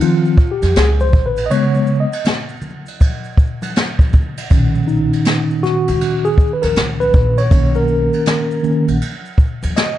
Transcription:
0.01 tine electric piano D#3 F3 C4 F4, ride, high conga, maracas
0.25 maracas
0.37 kick, maracas
0.51 tine electric piano G4
0.62 upright bass F2, snare, ride, high conga, maracas
0.76 upright bass C#2, tine electric piano G#4, snare, hi-hat pedal, ride, maracas
1.00 tine electric piano C5, high conga, maracas
1.13 upright bass A1, kick, low conga, maracas
1.26 tine electric piano B4
1.36 ride, maracas
1.46 tine electric piano D#5
1.50 tine electric piano C#3 G#3 B3 C#5, ride, maracas
1.75 high conga, maracas
1.87 maracas
2.00 tine electric piano D#5
2.12 ride, maracas
2.25 snare, hi-hat pedal, ride, low conga, maracas
2.49 maracas
2.62 high conga, low conga, maracas
2.86 ride, maracas
3.00 kick, ride, high conga, maracas
3.24 maracas
3.37 kick, maracas
3.62 ride, high conga, maracas
3.76 snare, hi-hat pedal, ride, maracas
3.99 kick, high conga, maracas
4.13 kick, low conga, maracas
4.37 ride, maracas
4.50 upright bass B1, tine electric piano A#2 D#3 C#4, kick, ride, maracas
4.75 high conga, maracas
4.88 tine electric piano D#4, maracas
5.13 ride, maracas
5.25 snare, hi-hat pedal, ride, low conga, maracas
5.51 maracas
5.63 tine electric piano F#4, snare, high conga, low conga, maracas
5.88 upright bass C#2, ride, maracas
6.01 ride, high conga, maracas
6.25 tine electric piano G#4, maracas
6.38 kick, maracas
6.53 tine electric piano B4
6.62 upright bass D#2, tine electric piano A#4, snare, ride, high conga, maracas
6.76 upright bass C#2, snare, hi-hat pedal, ride, maracas
7.00 tine electric piano B4, high conga, maracas
7.14 upright bass A#1, kick, low conga, maracas
7.37 tine electric piano C#5, ride, maracas
7.50 upright bass B1, tine electric piano D#3 A#3 C#4, kick, ride, maracas
7.75 tine electric piano A#4, high conga, maracas
7.88 maracas
8.13 ride, maracas
8.26 snare, hi-hat pedal, ride, low conga, maracas
8.51 maracas
8.63 tine electric piano D#3 A#3 C#4, high conga, low conga, maracas
8.88 upright bass A#1, ride, maracas
9.01 ride, high conga, maracas
9.26 maracas
9.38 kick, maracas
9.63 upright bass D#2, ride, high conga, maracas
9.76 tine electric piano D#5, snare, hi-hat pedal, ride, maracas

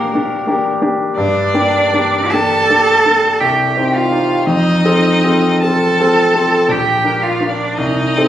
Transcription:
Already playing: grand piano A#1 A#3 D4 G4, cello A#3, violin A#4
0.14 grand piano A#3 D4 G4
0.47 grand piano A#3 D4 G4
0.81 grand piano A#3 D4 G4
1.16 grand piano G2, cello D4, violin D5
1.54 grand piano A#3 D4 G4
1.93 grand piano A#3 D4 G4
2.30 grand piano A#3 D4 G4, cello A4, violin A5
2.70 grand piano A#3 D4 G4
3.05 grand piano A#3 D4 G4
3.40 grand piano C2, cello G4, violin G5
3.77 grand piano C4 D#4 G4
3.94 cello F4, violin F5
4.11 grand piano C4 D#4 G4
4.46 grand piano F2, cello D#4, violin D#5
4.85 grand piano C4 F4 A4
5.24 grand piano C4 F4 A4
5.61 grand piano C4 F4 A4, cello A4, violin A5
6.00 grand piano C4 F4 A4
6.34 grand piano C4 F4 A4
6.68 grand piano A#1, cello G4, violin G5
7.04 grand piano D4 A#4
7.21 cello F4, violin F5
7.40 grand piano D4 A#4
7.50 cello D4, violin D5
7.77 grand piano C2, cello D#4, violin D#5
8.17 grand piano C4 D#4 A4

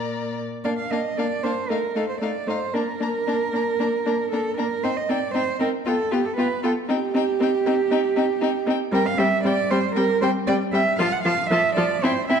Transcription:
Already playing: cello A#2, viola A#3, violin D5 A#5
0.64 viola A#3, violin D4 F5, cello D5
0.78 cello F5
0.90 viola A#3, violin D4 F5, cello D#5
1.17 viola A#3, violin D4 F5, cello D5
1.43 viola A#3, violin D4 F5, cello C5
1.69 viola A3, violin D#4 F5, cello A#4
1.95 viola A3, violin D#4 F5, cello A4
2.09 cello C5
2.21 viola A3, violin D#4 F5, cello D5
2.47 viola A3, violin D#4 F5, cello C5
2.74 viola A#3, violin D4 A#5, cello A#4
3.00 viola A#3, violin D4 A#5
3.27 viola A#3, violin D4 A#5
3.53 viola A#3, violin D4 A#5
3.79 viola A#3, violin D4 A#5
4.06 viola A#3, violin D4 A#5
4.32 viola A#3, violin D4 A#5, cello A4
4.57 viola A#3, violin D4 A#5, cello A#4
4.83 viola C4, violin D#4 G5, cello C5
4.97 cello D#5
5.09 viola C4, violin D#4 G5, cello D5
5.34 viola C4, violin D#4 G5, cello C5
5.60 viola C4, violin D#4 G5, cello A#4
5.86 viola B3, violin F4 G5, cello A4
6.11 viola B3, violin F4 G5, cello G4
6.25 cello A4
6.37 viola B3, violin F4 G5, cello B4
6.63 viola B3, violin F4 G5, cello A4
6.89 viola C4, violin D#4 G5, cello G4
7.14 viola C4, violin D#4 G5
7.40 viola C4, violin D#4 G5
7.66 viola C4, violin D#4 G5
7.91 viola C4, violin D#4 G5
8.16 viola C4, violin D#4 G5
8.41 viola C4, violin D#4 G5
8.66 viola C4, violin D#4 G5
8.92 viola G3, violin C4 G5, cello A#4
9.06 cello F5
9.18 viola G3, violin C4 G5, cello E5
9.44 viola G3, violin C4 G5, cello D5
9.70 viola G3, violin C4 G5, cello C5
9.96 viola G3, violin C4 G5, cello A#4
10.22 viola G3, violin C4 G5, cello C5
10.47 viola G3, violin C4 G5, cello D5
10.73 viola G3, violin C4 G5, cello E5
10.99 viola F3, violin F4 A5, cello F5
11.13 cello F#5
11.25 viola F3, violin F4 A5, cello F5
11.51 viola F3, violin F4 A5, cello E5
11.77 viola F3, violin F4 A5, cello D5
12.03 viola C4, violin E4 G5, cello C5
12.29 viola C4, violin E4 G5, cello E5

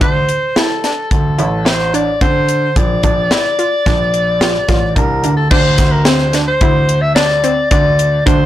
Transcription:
0.01 grand piano D2, synth arpeggio sound D4, soprano saxophone C5, kick, closed hi-hat
0.29 closed hi-hat
0.56 synth arpeggio sound E4, soprano saxophone A4, snare, closed hi-hat
0.84 synth arpeggio sound D4, snare, closed hi-hat
1.11 grand piano D2, soprano saxophone A4, kick, closed hi-hat
1.38 grand piano A1, synth arpeggio sound E4, closed hi-hat
1.65 synth arpeggio sound E4, soprano saxophone C5, snare, closed hi-hat
1.94 synth arpeggio sound D4, soprano saxophone D5, closed hi-hat
2.21 grand piano D3, synth arpeggio sound C4, soprano saxophone C5, kick, closed hi-hat
2.49 closed hi-hat
2.76 grand piano A#1, soprano saxophone D5, kick, closed hi-hat
3.03 grand piano A#1, synth arpeggio sound D4, kick, closed hi-hat
3.31 synth arpeggio sound E4, snare, closed hi-hat
3.59 synth arpeggio sound F4, closed hi-hat
3.86 grand piano A#1, synth arpeggio sound D4, kick, snare, closed hi-hat
4.14 closed hi-hat
4.41 synth arpeggio sound F4, snare, closed hi-hat
4.68 grand piano A1, synth arpeggio sound F4, kick, snare, closed hi-hat
4.95 grand piano C2, synth arpeggio sound D4, soprano saxophone A#4, kick, closed hi-hat
5.22 grand piano D2, synth arpeggio sound D4, closed hi-hat
5.36 soprano saxophone A4
5.51 grand piano D2, synth arpeggio sound D4, soprano saxophone C5, kick, crash
5.78 grand piano D2, kick, snare, closed hi-hat
5.91 soprano saxophone A#4
6.05 synth arpeggio sound C4, soprano saxophone C5, snare, closed hi-hat
6.33 synth arpeggio sound D4, snare, closed hi-hat
6.48 soprano saxophone C5
6.61 grand piano D2, synth arpeggio sound E4, kick, closed hi-hat
6.89 closed hi-hat
7.01 soprano saxophone E5
7.15 synth arpeggio sound D4, soprano saxophone D5, snare, closed hi-hat
7.44 synth arpeggio sound C4, closed hi-hat
7.71 grand piano D2, synth arpeggio sound D4, soprano saxophone D5, kick, closed hi-hat
7.99 closed hi-hat
8.26 grand piano D2, synth arpeggio sound D4, soprano saxophone C5, kick, closed hi-hat

